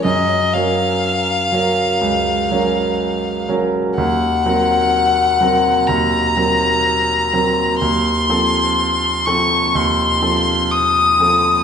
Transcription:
<<
  \new Staff \with { instrumentName = "Violin" } { \time 4/4 \key ges \lydian \tempo 4 = 62 ees''8 f''2. r8 | ges''2 bes''2 | c'''4. des'''8 c'''4 ees'''4 | }
  \new Staff \with { instrumentName = "Grand piano" } { \time 4/4 \key ges \lydian ges,8 <ges des' bes'>4 <ges des' bes'>8 des,8 <ges des' bes'>4 <ges des' bes'>8 | ees,8 <ges c' bes'>4 <ges c' bes'>8 ees,8 <ges c' bes'>4 <ges c' bes'>8 | ees,8 <f c' a'>4 <f c' a'>8 ees,8 <f c' a'>4 <f c' a'>8 | }
>>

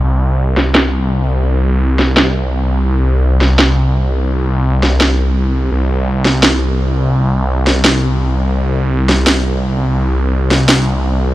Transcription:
<<
  \new Staff \with { instrumentName = "Detuned saw bass" } { \clef bass \time 4/4 \key des \lydian \tempo 4 = 169 c,1~ | c,1~ | c,1~ | c,1 |
c,1~ | c,1~ | c,1~ | c,1 | }
  \new DrumStaff \with { instrumentName = "Drums" } \drummode { \time 4/4 r4 r8 sn8 sn4 r4 | r4 r8 sn8 sn4 r4 | r4 r8 sn8 sn4 r4 | r4 r8 sn8 sn4 r4 |
r4 r8 sn8 sn4 r4 | r4 r8 sn8 sn4 r4 | r4 r8 sn8 sn4 r4 | r4 r8 sn8 sn4 r4 | }
>>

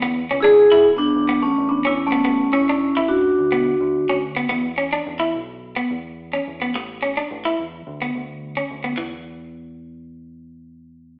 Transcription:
<<
  \new Staff \with { instrumentName = "Vibraphone" } { \time 4/4 \key e \mixolydian \tempo 4 = 107 \tuplet 3/2 { r4 <e' gis'>8~ <e' gis'>8. r16 <b d'>8~ } <b d'>8 <a cis'>8 \tuplet 3/2 { <b d'>8 <cis' e'>8 <a cis'>8~ } | <a cis'>8 <cis' e'>4 <d' fis'>2 r8 | r1 | r1 |
r1 | }
  \new Staff \with { instrumentName = "Clean electric guitar" } { \time 4/4 \key e \mixolydian b8 cis'16 d'8 e'8 r8 b8 r8 cis'8 b16 | b8 cis'16 d'8 e'8 r8 b8 r8 cis'8 b16 | b8 cis'16 d'8 e'8 r8 b8 r8 cis'8 b16 | r8 cis'16 d'8 e'8 r8 b8 r8 cis'8 b16 |
e8 r2. r8 | }
  \new Staff \with { instrumentName = "Fingered electric bass" } { \clef bass \time 4/4 \key e \mixolydian e,8 cis,8. b,,8. e,8. e,8 e,8. | a,,8 fis,,8. a,,8. d,8. d,8 d,8. | e,4 e,8 b,,4 e,4 e,8 | a,,4 a,,8 e,8 d,8 d,4 d,8 |
e,1 | }
>>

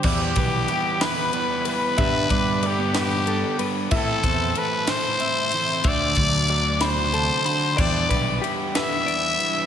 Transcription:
<<
  \new Staff \with { instrumentName = "Clean electric guitar" } { \time 6/8 \key e \minor \tempo 4. = 62 d''8 b'8 g'8 b'8 d''8 b'8 | e''8 d''8 d''8 b'8 a'8 b'8 | e''8 c''8 a'8 c''8 e''8 c''8 | e''8 d''8 d''8 b''8 a'8 b''8 |
d''8 b'8 g'8 b'8 d''8 b'8 | }
  \new Staff \with { instrumentName = "Trumpet" } { \time 6/8 \key e \minor g'4. b'4 b'8~ | b'4 g'8 g'4 r8 | a'4 b'8 c''4. | d''4. c''4. |
d''4 r8 e''4. | }
  \new Staff \with { instrumentName = "Overdriven electric guitar" } { \time 6/8 \key e \minor <e g b e'>8 <e g b e'>8 <e g b e'>8 <e g b e'>8 <e g b e'>8 <e g b e'>8 | <d g b d'>8 <d g b d'>8 <d g b d'>8 <d g b d'>8 <d g b d'>8 <d g b d'>8 | <e a c' e'>8 <e a c' e'>8 <e a c' e'>8 <e a c' e'>8 <e a c' e'>8 <e a c' e'>8 | <d a d' fis'>8 <d a d' fis'>8 <d a d' fis'>8 <d a d' fis'>8 <d a d' fis'>8 <d a d' fis'>8 |
<e g b e'>8 <e g b e'>8 <e g b e'>8 <e g b e'>8 <e g b e'>8 <e g b e'>8 | }
  \new Staff \with { instrumentName = "Clean electric guitar" } { \clef bass \time 6/8 \key e \minor << { r4 b2 | <g b d' g'>4 a16 b4.~ b16 | <e c' e' g'>4 c'4 c'8 e'8 | r4 a2 |
<e d' e' g'>4 d'2 | } \\ { e,8 e4. e,8 r8 | g,4. e,8 r8 g,8 | a,8 e4 e4. | d8 fis4 b,8 c8 d8 |
e,8 e4. e,8 r8 | } >> }
  \new Staff \with { instrumentName = "Picked electric bass" } { \clef bass \time 6/8 \key e \minor e,8 b,,8 r2 | g,8 g,2 r8 | a,8 e,8 r2 | d,8 d,2 r8 |
e,8 b,,8 r2 | }
  \new DrumStaff \with { instrumentName = "Drums" } \drummode { \time 6/8 <cymc bd>8 <bd cymr>8 cymr8 <cymr sn>8 cymr8 cymr8 | <bd cymr>8 <bd cymr>8 cymr8 <cymr sn>8 cymr8 cymr8 | <cymc bd>8 <bd cymr>8 cymr8 <cymr sn>8 cymr8 cymr8 | <bd cymr>8 <bd cymr>8 cymr8 <cymr sn>8 cymr8 cymr8 |
<cymc bd>8 <bd cymr>8 cymr8 <cymr sn>8 cymr8 cymr8 | }
>>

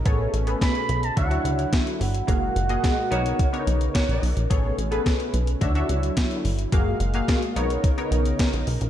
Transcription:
<<
  \new Staff \with { instrumentName = "Analog synth lead" } { \time 4/4 \key b \mixolydian \tempo 4 = 108 r4 b''8. a''16 fis''4 r8 fis''8~ | fis''2.~ fis''8 r8 | r1 | r1 | }
  \new Staff \with { instrumentName = "Analog polysynth" } { \time 4/4 \key b \mixolydian <b gis' a' cis''>8 r16 <b gis' a' b'>4 r16 <d' fis' cis'' e''>16 <d' fis' cis'' e''>4~ <d' fis' cis'' e''>16 r8 | <ais fis' gis' eis''>8 r16 <ais fis' gis' dis''>8. <b dis' ais' cis''>8 r16 <b d' dis' ais' cis''>4~ <b d' dis' ais' cis''>16 r8 | <b gis' a' cis''>8 r16 <b gis' a' b'>4 r16 <d' fis' cis'' e''>16 <d' fis' cis'' e''>4~ <d' fis' cis'' e''>16 r8 | <ais fis' gis' eis''>8 r16 <ais fis' gis' eis''>8. <b dis' ais' cis''>8 r16 <b dis' ais' cis''>4~ <b dis' ais' cis''>16 r8 | }
  \new Staff \with { instrumentName = "Horn section" } { \time 4/4 \key b \mixolydian r1 | r4. <ais fis' cis''>16 r4 r16 <ais fis' cis''>8. r16 | r1 | r1 | }
  \new Staff \with { instrumentName = "Analog synth pad" } { \clef bass \time 4/4 \key b \mixolydian <b, a cis'>2 <d fis e'>2 | <ais, gis fis'>4. <cis dis' ais'>2~ <cis dis' ais'>8 | <b, a cis'>2 <d fis e'>2 | <ais, gis eis''>4. <cis dis' ais'>2~ <cis dis' ais'>8 | }
  \new Staff \with { instrumentName = "Analog synth bass" } { \clef bass \time 4/4 \key b \mixolydian a,,8 a,,8 r8 b,,8 d,8 cis,8 r8 g,,8 | fis,,8 fis,,8 r8 b,,8 r8 b,,8 r16 ais,,16 b,,16 ais,,16 | a,,8 a,,8 r8 b,,8 d,8 cis,8 r8 g,,8 | fis,,8 fis,,8 r8 b,,8 r8 b,,8 r16 ais,,16 b,,16 ais,,16 | }
  \new DrumStaff \with { instrumentName = "Drums" } \drummode { \time 4/4 <hh bd>8 hh16 hh16 <hh bd sn>16 hh16 hh16 hh16 <hh bd>16 hh16 hh16 hh16 <hh bd sn>16 hh16 hho16 hh16 | <hh bd>8 hh16 hh16 <hh bd sn>8 hh16 hh16 <hh bd>16 hh16 hh16 hh16 <hh bd sn>16 hh16 hho16 hh16 | <hh bd>8 hh16 hh16 <hh bd sn>16 hh16 hh16 hh16 <hh bd>16 hh16 hh16 hh16 <hh bd sn>16 hh16 hho16 hh16 | <hh bd>8 hh16 hh16 <hh bd sn>16 hh16 hh16 hh16 <hh bd>16 hh16 hh16 hh16 <hh bd sn>16 hh16 hho16 hh16 | }
>>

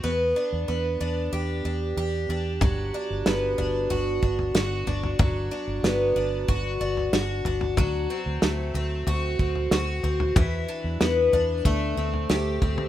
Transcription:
<<
  \new Staff \with { instrumentName = "Twelve-string acoustic guitar" } { \time 4/4 \key g \major \tempo 4 = 93 b8 d'8 b8 d'8 g'8 d'8 g'8 d'8 | fis8 d'8 b8 d'8 fis'8 d'8 fis'8 d'8 | fis8 d'8 b8 d'8 fis'8 d'8 fis'8 d'8 | fis8 c'8 a8 c'8 fis'8 c'8 fis'8 c'8 |
e8 d'8 b8 d'8 a8 c'8 g'8 c'8 | }
  \new Staff \with { instrumentName = "Fingered electric bass" } { \clef bass \time 4/4 \key g \major e,8 r16 e,16 e,8 e,8 e,8 e,8 e,8 e,8 | g,,8 r16 g,,16 g,,8 g,,8 g,,8 g,,8 g,,8 g,,8 | g,,8 r16 g,,16 g,,8 g,,8 g,,8 g,,8 g,,8 g,,8 | d,8 r16 d,16 d,8 d,8 d,8 d,8 d,8 d,8 |
e,8 r16 e,16 e,8 e,8 d,8 d,8 d,8 d,8 | }
  \new DrumStaff \with { instrumentName = "Drums" } \drummode { \time 4/4 r4 r4 r4 r4 | <bd tomfh>4 sn8 tomfh8 tomfh8 bd16 tomfh16 sn8 tomfh16 tomfh16 | <bd tomfh>4 sn4 <bd tomfh>8. tomfh16 sn8 tomfh16 tomfh16 | <bd tomfh>4 sn8 tomfh8 tomfh8 bd16 tomfh16 sn8 tomfh16 tomfh16 |
<bd tomfh>4 sn8 tomfh8 <bd tomfh>8. tomfh16 sn8 <bd tomfh>16 tomfh16 | }
>>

